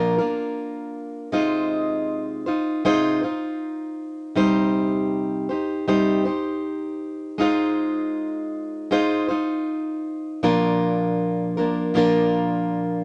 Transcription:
0.00 0.18 A#2 medium
0.00 0.18 F3 medium
0.00 0.18 A#3 medium
0.00 0.19 D4 medium
0.00 0.18 F4 medium
0.00 0.17 A#4 medium
0.19 1.32 A#3 soft
0.19 1.33 D4 soft
0.19 1.33 F4 soft
0.19 1.32 A#4 medium
1.32 2.46 C3 medium
1.32 2.46 G#3 medium
1.32 2.48 D#4 medium
1.32 2.46 F4 medium
1.32 2.46 C5 medium
2.46 2.84 D#4 soft
2.46 2.85 F4 soft
2.46 2.84 C5 medium
2.85 3.22 C3 medium
2.85 3.23 G#3 medium
2.85 3.23 D#4 medium
2.85 3.23 F4 medium
2.85 3.22 C5 loud
3.23 4.36 D#4 soft
3.23 4.37 F4 soft
3.23 4.37 C5 medium
4.35 5.50 C3 medium
4.35 5.50 G3 medium
4.35 5.51 D#4 medium
4.35 5.49 G4 medium
4.35 5.49 C5 loud
5.49 5.87 D#4 soft
5.49 5.87 G4 soft
5.49 5.88 C5 medium
5.88 6.26 C3 medium
5.88 6.26 G3 medium
5.88 6.26 D#4 medium
5.88 6.25 G4 medium
5.88 6.24 C5 medium
6.25 7.39 D#4 soft
6.25 7.40 G4 soft
6.25 7.41 C5 medium
7.38 8.90 G#3 medium
7.38 8.90 D#4 medium
7.38 8.92 F4 medium
7.38 8.91 C5 medium
8.91 9.29 G#3 medium
8.91 9.30 D#4 medium
8.91 9.29 F4 medium
8.91 9.27 C5 loud
9.29 10.43 D#4 soft
9.29 10.44 F4 soft
9.29 10.43 C5 medium
10.43 11.57 A#2 medium
10.43 11.94 F3 medium
10.43 11.57 A#3 medium
10.43 11.57 D4 loud
10.43 11.58 F4 medium
10.43 11.56 A#4 medium
11.57 11.94 A#3 soft
11.57 11.95 D4 soft
11.57 11.95 F4 soft
11.57 11.95 A#4 medium
11.94 13.04 A#2 medium
11.94 13.04 F3 medium
11.94 13.04 A#3 medium
11.94 13.04 D4 medium
11.94 13.04 F4 loud
11.94 13.04 A#4 medium

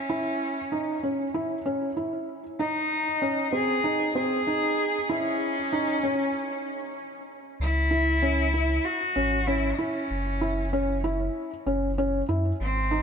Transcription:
0.00 1.03 C#4 medium
0.10 0.56 E4 medium
0.72 0.95 D#4 medium
1.03 1.26 C#4 medium
1.34 1.58 E4 medium
1.66 1.89 C#4 medium
1.97 2.43 E4 medium
2.59 3.49 D#4 loud
2.59 3.06 D#4 medium
3.22 3.45 C#4 medium
3.52 3.76 C4 medium
3.52 4.12 G#4 loud
3.84 4.07 D#4 medium
4.15 4.39 C4 medium
4.15 5.11 G#4 loud
4.47 4.93 D#4 medium
5.09 6.97 C#4 loud
5.09 5.56 E4 medium
5.73 5.95 D#4 medium
6.03 6.26 C#4 medium
7.60 8.79 C#2 medium
7.60 8.86 E4 loud
7.91 8.14 E4 medium
8.22 8.45 C#4 medium
8.54 9.00 E4 medium
8.84 9.48 F#4 loud
9.16 9.73 G#1 medium
9.16 9.39 C#4 medium
9.46 9.70 C#4 medium
9.46 9.80 E4 medium
9.78 11.03 C#4 medium
9.78 10.02 E4 medium
10.11 11.29 F#1 medium
10.41 10.64 E4 medium
10.73 10.96 C#4 medium
11.04 11.50 E4 medium
11.66 12.23 F#1 medium
11.66 11.89 C#4 medium
11.98 12.21 C#4 medium
12.29 12.53 F#2 medium
12.29 12.52 E4 medium
12.60 13.02 G#1 loud
12.60 13.02 C4 medium
12.91 13.02 D#4 medium

